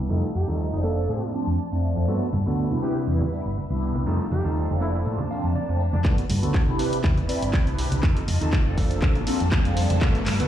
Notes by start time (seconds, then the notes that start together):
0.09 F2 G3 A3 C4 D#4 F4 A4 F5
0.34 F2 G4
0.47 D#2 G3 A3 C4 D#4 F4 A4
0.72 F1 F3 A3 C4 D4 D#4
0.84 A#3 D4 A4 A5
1.09 A2 F3 A3 C4 D4
1.33 F3 A3 C4 D4, muted clean electric guitar stroke
1.47 F2
1.72 F2 F3 A3 C4 D4
1.96 F2, muted clean electric guitar stroke
2.08 G2 A3 B3 D4 F#4 A4 B4, tambourine
2.33 G2, tambourine, high conga
2.46 D2 A3 B3 D4 F#4 A4, tambourine
2.58 tambourine
2.71 C3 G3 B3 D4 E4, high conga
2.82 C4 E4 G4 B4 E5, tambourine
2.95 tambourine
3.07 E2 G3 B3 D4 E4, tambourine
3.21 high conga, low conga
3.32 G3 B3 D4 E4, muted clean electric guitar stroke, tambourine
3.45 G1, tambourine
3.57 tambourine, high conga
3.70 C2 G3 B3 D4 E4
3.82 tambourine
3.95 C2, muted clean electric guitar stroke, tambourine, high conga
4.06 F2 G3 A3 C4 D#4 F4 A4 F5, tambourine
4.20 tambourine
4.31 F2 G4, tambourine, high conga
4.44 D#2 G3 A3 C4 D#4 F4 A4, tambourine
4.56 tambourine
4.69 F1 F3 A3 C4 D4, high conga
4.80 A#3 D4 E4 A4 A5, tambourine
4.94 E4, tambourine
5.05 A2 F3 A3 C4 D4, tambourine
5.18 high conga, low conga
5.30 F3 A3 C4 D4 F5, muted clean electric guitar stroke, tambourine
5.43 F2, tambourine
5.55 D5, tambourine, high conga
5.68 F2 F3 A3 C4 D4
5.80 tambourine
5.93 F2 D4, muted clean electric guitar stroke, tambourine, high conga
6.04 G2 B3 D4 F#4 A4 B4 A5, kick, clap, tambourine, riser
6.18 closed hi-hat
6.30 G2, open hi-hat, tambourine, high conga
6.42 D2 B3 D4 F#4 A4 B4, closed hi-hat
6.54 kick, clap
6.67 C3 D4 E4 G4 B4, high conga
6.79 C4 E4 B4 B5, open hi-hat, tambourine
6.93 closed hi-hat, tambourine
7.03 E2 D4 E4 G4 B4, kick, clap
7.17 closed hi-hat, high conga, low conga
7.28 C4 D4 E4 G4 B4 D5, open hi-hat, tambourine
7.42 G1, closed hi-hat
7.53 kick, clap, tambourine, high conga
7.66 C2 D4 E4 G4 B4, closed hi-hat, tambourine
7.78 open hi-hat, tambourine
7.92 C2, closed hi-hat, tambourine, high conga
8.02 F2 C4 D#4 F4 G4 A4 D#5 A5, kick, clap
8.17 closed hi-hat
8.28 F2, open hi-hat, tambourine, high conga
8.41 D#2 C4 D#4 F4 G4 A4, closed hi-hat, tambourine
8.53 kick, clap
8.66 F1 C4 D4 F4 A4, high conga
8.77 A#3 D4 A4 A5, kick, open hi-hat, tambourine
8.91 closed hi-hat, tambourine
9.02 A2 C4 D4 F4 A4, kick, clap
9.15 closed hi-hat, high conga, low conga
9.27 A#3 C4 D4 F4 A4, open hi-hat, tambourine
9.40 F2, closed hi-hat, tambourine
9.52 kick, clap, tambourine, high conga
9.65 F2 C4 D4 F4 A4, closed hi-hat, tambourine
9.77 open hi-hat, tambourine
9.90 F2, closed hi-hat, tambourine, high conga
10.01 B3 D4 F#4 A4 B4, kick, clap, tambourine
10.15 closed hi-hat
10.27 G2, clap, open hi-hat, tambourine, high conga
10.39 D2 B3 D4 F#4 A4 B4, closed hi-hat, tambourine